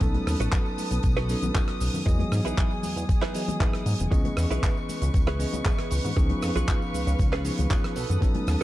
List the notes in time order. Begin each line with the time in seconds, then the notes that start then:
Already playing: B4 A5 D#6
0.00 B1 F#3 B3 C#4 D#4 A4, kick, closed hi-hat, tambourine, shaker
0.14 muted clean electric guitar stroke, closed hi-hat, tambourine, high conga
0.27 D#2, cross-stick, open hi-hat, tambourine, shaker
0.40 A1 D#4 F#4 A4 B4, closed hi-hat, shaker
0.52 kick, clap, closed hi-hat, tambourine, shaker
0.66 tambourine
0.78 open hi-hat, tambourine, high conga, shaker
0.91 B1, muted clean electric guitar stroke, closed hi-hat, tambourine, shaker
1.03 B1, kick, closed hi-hat, tambourine, shaker
1.17 D#4 F#4 A4 B4, cross-stick, closed hi-hat
1.29 F#3 B3 C#4 D#4 A4, open hi-hat, tambourine, shaker
1.42 B1, closed hi-hat, tambourine, high conga, low conga, shaker
1.55 D#4 F#4 A4 B4, kick, clap, closed hi-hat, tambourine, shaker
1.68 cross-stick, closed hi-hat, tambourine
1.80 B1, open hi-hat, tambourine, shaker
1.94 F#2, tambourine, low conga, shaker
2.06 E2 E3 F#3 B3 G#4 D#5, muted clean electric guitar stroke, kick, closed hi-hat, tambourine, shaker
2.19 muted clean electric guitar stroke, closed hi-hat, tambourine, high conga
2.32 G#2, cross-stick, open hi-hat, tambourine, shaker
2.45 B1 D#4 E4 G#4 B4, closed hi-hat, tambourine, shaker
2.57 kick, clap, closed hi-hat, tambourine, shaker
2.71 tambourine
2.83 E2, open hi-hat, tambourine, high conga, shaker
2.96 E2, muted clean electric guitar stroke, closed hi-hat, tambourine, shaker
3.09 kick, closed hi-hat, tambourine, shaker
3.22 D#4 E4 G#4 B4, cross-stick, clap, closed hi-hat, tambourine
3.34 E3 F#3 B3 G#4 D#5, open hi-hat, tambourine, shaker
3.48 closed hi-hat, tambourine, high conga, low conga, shaker
3.60 D#4 E4 G#4 B4, kick, clap, closed hi-hat, tambourine, shaker
3.73 cross-stick, closed hi-hat, tambourine
3.86 G#2, open hi-hat, tambourine, shaker
3.99 E1, closed hi-hat, tambourine, low conga, shaker
4.11 C#2 E3 B3 C#4 G#4 B4 D#5 C#6, muted clean electric guitar stroke, kick, closed hi-hat, tambourine, shaker
4.25 muted clean electric guitar stroke, closed hi-hat, tambourine, high conga
4.37 E2, cross-stick, open hi-hat, tambourine, shaker
4.51 B1 C#4 E4 G#4 B4, closed hi-hat, tambourine, shaker
4.63 kick, clap, closed hi-hat, tambourine, shaker
4.77 tambourine
4.89 open hi-hat, tambourine, high conga, shaker
5.02 C#2, muted clean electric guitar stroke, closed hi-hat, tambourine, shaker
5.14 C#2, kick, closed hi-hat, tambourine, shaker
5.27 C#4 E4 G#4 B4, cross-stick, closed hi-hat
5.39 E3 B3 C#4 G#4 D#5, open hi-hat, tambourine, shaker
5.52 C#2, closed hi-hat, tambourine, high conga, low conga, shaker
5.65 C#4 E4 G#4 B4, kick, clap, closed hi-hat, tambourine, shaker
5.79 cross-stick, closed hi-hat, tambourine
5.91 C#2, open hi-hat, tambourine, shaker
6.05 G#2, tambourine, low conga, shaker
6.16 C#2 F3 B3 C#4 D#4 G#4 F5, muted clean electric guitar stroke, kick, closed hi-hat, tambourine, shaker
6.30 muted clean electric guitar stroke, closed hi-hat, tambourine, high conga
6.42 F2, cross-stick, open hi-hat, tambourine, shaker
6.55 B1 C#4 F4 G#4 B4, closed hi-hat, tambourine, shaker
6.68 kick, clap, closed hi-hat, tambourine, shaker
6.82 tambourine
6.94 C#2, open hi-hat, tambourine, high conga, shaker
7.07 C#2, muted clean electric guitar stroke, closed hi-hat, tambourine, shaker
7.19 C#2, kick, closed hi-hat, tambourine, shaker
7.33 C#4 F4 G#4 B4, cross-stick, clap, closed hi-hat
7.44 F3 B3 C#4 D#4 G#4, open hi-hat, tambourine, shaker
7.58 C#2, closed hi-hat, tambourine, high conga, low conga, shaker
7.70 C#4 F4 G#4 B4, kick, clap, closed hi-hat, tambourine, shaker
7.84 cross-stick, closed hi-hat, tambourine
7.96 B1 D#4 F#4 A4 B4 A5 D#6, open hi-hat, tambourine, shaker
8.09 F#2, closed hi-hat, tambourine, low conga, shaker
8.21 B1 F#3 B3 C#4 D#4 A4, kick, closed hi-hat, tambourine, shaker
8.34 muted clean electric guitar stroke, closed hi-hat, tambourine, high conga
8.47 D#2, cross-stick, open hi-hat, tambourine, shaker